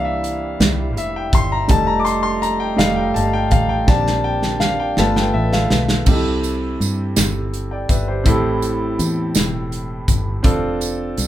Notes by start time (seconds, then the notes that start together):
Already playing: C2 E3 G3 A#3 C4 D4 E4 E5 F5
0.05 E5
0.24 closed hi-hat
0.60 C2, snare, closed hi-hat
0.97 F1 E5, closed hi-hat
1.16 G5
1.33 G1 C6, kick, closed hi-hat
1.52 A#5
1.68 F1 F3 G3 A3 D#4 A5, kick, closed hi-hat
1.87 A#5
2.00 D6
2.05 C6, closed hi-hat
2.23 C6
2.42 A#5, closed hi-hat
2.60 G5
2.76 F1 G3 A3 D#4 F5, snare, closed hi-hat
2.96 G5
3.14 G1 A5, closed hi-hat
3.33 G5
3.51 A1 F5, kick, closed hi-hat
3.69 G5
3.87 A#1 G3 A#3 C4 D4 A5, kick, snare
4.07 snare
4.24 G5
4.43 snare
4.60 F5, snare
4.80 G5
4.97 G1 A3 B3 F4 A5, snare
5.16 G5, snare
5.34 A1 E5
5.53 F5, snare
5.70 B1, snare
5.89 snare
6.05 C2 C3 C4 D#4 G4, kick, crash
6.10 E4 A4
6.43 closed hi-hat, tambourine
6.80 G2, closed hi-hat, tambourine
7.16 G1, snare, closed hi-hat, tambourine
7.54 closed hi-hat
7.71 D5 G5
7.89 G1 B4 E5, kick, closed hi-hat, tambourine
8.08 G4 C5
8.24 A1 A2 C4 E4 G4, kick, closed hi-hat
8.29 A4
8.62 closed hi-hat, tambourine
8.99 E2, closed hi-hat, tambourine
9.35 E1, snare, closed hi-hat, tambourine
9.72 closed hi-hat
10.08 G1, kick, closed hi-hat, tambourine
10.43 F1 C4 D4 F4 A4, kick, closed hi-hat
10.81 closed hi-hat, tambourine
11.17 C2, closed hi-hat, tambourine